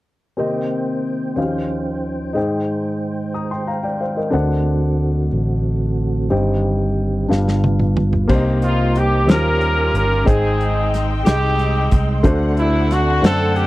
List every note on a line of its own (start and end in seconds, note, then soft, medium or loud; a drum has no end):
0.37 1.33 C3 soft
0.37 1.37 D#3 soft
0.37 1.37 A#3 soft
0.37 1.37 C4 soft
0.37 1.37 G4 soft
0.37 1.37 A#4 soft
0.37 4.31 C5 soft
0.37 1.38 D#5 medium
0.37 4.31 G5 soft
1.36 2.35 D#2 soft
1.36 2.32 D#3 soft
1.36 2.35 F3 soft
1.36 2.36 C#4 soft
1.36 2.35 C#4 soft
1.36 1.43 F#4 soft
1.36 2.34 C5 soft
1.36 2.36 F5 soft
1.43 2.39 G4 soft
2.33 3.30 G#2 soft
2.33 4.32 D#3 soft
2.33 4.32 G#3 soft
2.33 4.29 D#4 medium
2.33 4.29 G#4 soft
2.33 3.33 C5 soft
2.33 3.33 G5 medium
3.34 3.51 A#5 soft
3.34 3.50 D#6 soft
3.51 3.68 G5 soft
3.51 3.67 C6 soft
3.67 3.84 F5 soft
3.67 3.83 A#5 soft
3.83 4.00 D5 soft
3.83 4.00 G5 soft
4.01 4.17 C5 soft
4.01 4.16 F5 soft
4.16 4.49 A#4 soft
4.16 4.48 D#5 soft
4.30 5.29 D2 medium
4.30 5.28 D3 medium
4.30 6.29 D3 soft
4.30 6.29 A3 soft
4.30 7.27 C4 soft
4.30 6.26 D4 medium
4.30 6.29 F#4 soft
4.30 6.27 A4 soft
4.30 6.27 C5 soft
4.30 6.28 F#5 medium
5.33 6.28 A1 medium
6.30 7.26 G1 medium
6.30 7.26 G2 medium
6.30 7.30 D#3 soft
6.30 8.27 G3 soft
6.30 7.30 D#4 medium
6.30 7.27 G4 soft
6.30 7.29 G4 medium
6.30 7.30 C5 soft
6.30 7.31 G5 medium
7.28 8.25 G1 medium
7.28 8.25 G2 soft
7.28 8.28 D3 soft
7.28 8.28 B3 soft
7.28 8.27 D4 soft
7.28 8.28 F4 medium
7.28 8.28 G4 soft
7.28 8.29 B4 soft
7.28 8.29 F5 medium
7.28 snare soft
7.48 snare soft
7.64 high tom medium
7.80 mid tom medium
7.97 mid tom medium
8.13 floor tom medium
8.28 9.28 C2 medium
8.28 9.24 C3 medium
8.28 9.27 G3 medium
8.28 9.02 A#3 medium
8.28 9.28 A#3 soft
8.28 8.36 D4 medium
8.28 9.28 D#4 medium
8.28 9.03 G4 medium
8.28 10.25 G4 soft
8.28 9.03 C5 medium
8.28 9.27 C5 soft
8.28 9.27 D#5 soft
8.28 9.28 A#5 medium
8.28 kick medium
8.28 crash medium
8.34 9.06 D#4 medium
8.62 8.99 F4 medium
8.62 closed hi-hat soft
8.66 8.95 F4 medium
8.96 9.32 G4 medium
8.96 9.28 G4 medium
8.96 closed hi-hat medium
9.26 9.90 D#2 medium
9.26 10.22 D#3 soft
9.26 9.34 F#3 soft
9.26 10.26 G3 medium
9.26 10.01 C#4 soft
9.26 10.23 C#4 medium
9.26 10.27 C#4 soft
9.26 10.01 F4 soft
9.26 10.27 F4 medium
9.26 10.23 G4 medium
9.26 9.93 A#4 medium
9.26 10.02 C5 medium
9.26 10.27 F5 soft
9.26 13.67 C6 medium
9.26 snare medium
9.26 closed hi-hat medium
9.30 10.04 G3 soft
9.30 9.95 A#4 medium
9.61 closed hi-hat soft
9.94 10.24 G1 medium
9.94 10.25 A#4 medium
9.94 10.27 A#4 medium
9.94 closed hi-hat medium
10.25 11.22 G#1 medium
10.25 11.21 G#2 soft
10.25 11.00 G#3 medium
10.25 12.22 G#3 soft
10.25 11.22 C4 medium
10.25 11.00 D#4 medium
10.25 11.22 D#4 medium
10.25 12.23 D#4 medium
10.25 10.93 G#4 medium
10.25 10.90 G#4 medium
10.25 11.00 C5 medium
10.25 12.22 D#5 soft
10.25 11.00 G5 medium
10.25 12.22 G5 soft
10.25 kick medium
10.25 closed hi-hat medium
10.29 12.24 G#3 medium
10.29 12.24 G5 medium
10.61 closed hi-hat soft
10.94 snare soft
10.94 closed hi-hat medium
11.25 11.88 C2 medium
11.25 11.99 G#3 soft
11.25 12.21 C4 medium
11.25 11.99 D#4 soft
11.25 12.21 D#4 medium
11.25 11.95 G4 medium
11.25 11.99 G4 soft
11.25 11.96 G4 medium
11.25 12.00 D#5 medium
11.25 snare medium
11.25 closed hi-hat medium
11.59 closed hi-hat soft
11.91 12.24 C2 medium
11.91 kick medium
11.91 closed hi-hat medium
12.23 13.19 D2 medium
12.23 13.19 D3 medium
12.23 12.98 A3 medium
12.23 13.67 A3 medium
12.23 13.67 C4 medium
12.23 12.98 D4 medium
12.23 13.67 D4 medium
12.23 12.98 F#4 medium
12.23 13.67 A4 medium
12.23 12.98 C5 medium
12.23 13.67 D5 soft
12.23 13.67 F#5 soft
12.23 13.67 F#5 medium
12.23 kick medium
12.23 closed hi-hat medium
12.57 12.94 E4 medium
12.57 12.90 E4 medium
12.57 closed hi-hat soft
12.91 13.24 F#4 medium
12.91 13.25 F#4 medium
12.91 snare soft
12.91 closed hi-hat medium
13.21 13.67 F#2 medium
13.21 13.67 A3 medium
13.21 13.67 C4 medium
13.21 13.67 D4 soft
13.21 13.58 A4 medium
13.21 13.67 C5 medium
13.21 13.67 F#5 soft
13.21 snare medium
13.21 closed hi-hat medium
13.26 13.67 A4 medium
13.26 13.67 F#5 medium
13.56 13.67 G4 medium
13.56 closed hi-hat soft